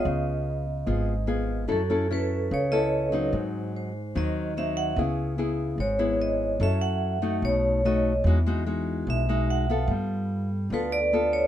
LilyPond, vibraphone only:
\new Staff \with { instrumentName = "Vibraphone" } { \time 4/4 \key cis \minor \tempo 4 = 146 dis''8 r2. r8 | a'4 b'4 cis''8 dis''8 r4 | r4 bis'4 dis''4 e''8 fis''8 | r2 cis''4 dis''4 |
e''8 fis''8 r4 cis''4 dis''4 | r2 e''4 fis''4 | r2 b'8 d''4 cis''8 | }